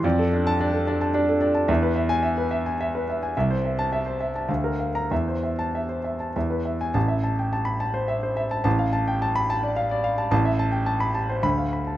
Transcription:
<<
  \new Staff \with { instrumentName = "Grand piano" } { \time 3/4 \key a \minor \tempo 4 = 107 << { r8. a''8 r4. r16 | r8. gis''8 r4. r16 | r8. a''8 r4. bes''16 | r8. a''8 r4. gis''16 |
r4 r16 b''16 r4. | r4 r16 b''16 r4. | r4 r16 b''16 r8 b''8 r8 | } \\ { d''16 a'16 d''8 d''16 a'16 d''16 a''16 d''16 a'16 d''16 a''16 | e''16 b'16 e''8 e''16 b'16 e''16 gis''16 e''16 b'16 e''16 gis''16 | e''16 c''16 e''8 e''16 c''16 e''16 a''16 f''16 bes'16 f''8 | e''16 c''16 e''8 e''16 c''16 e''16 a''16 e''16 b'16 e''8 |
a''16 e''16 a''16 g''16 a''8 a''16 c''16 e''16 c''16 e''16 a''16 | a''16 f''16 a''16 g''16 a''8 a''16 d''16 f''16 d''16 f''16 a''16 | a''16 e''16 a''16 g''16 a''8 a''16 c''16 r16 f''16 b''16 a''16 | } >> }
  \new Staff \with { instrumentName = "Grand piano" } { \clef bass \time 3/4 \key a \minor f,8 d'8 d'8 d'8 d'8 d'8 | e,2. | c,2 d,4 | e,2 e,4 |
a,,2. | a,,2. | a,,2 d,4 | }
>>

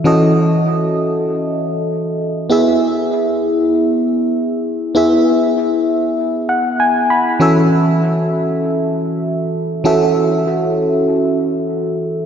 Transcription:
\new Staff \with { instrumentName = "FM electric piano" } { \time 4/4 \key a \lydian \tempo 4 = 98 << { r1 | r1 | r2 r8 fis''8 gis''8 b''8 | r1 |
r1 | } \\ { <e cis' fis' a' dis''>1 | <b e' gis' e''>1 | <b e' gis' e''>1 | <e cis' fis' a' e''>1 |
<e cis' fis' a' e''>1 | } >> }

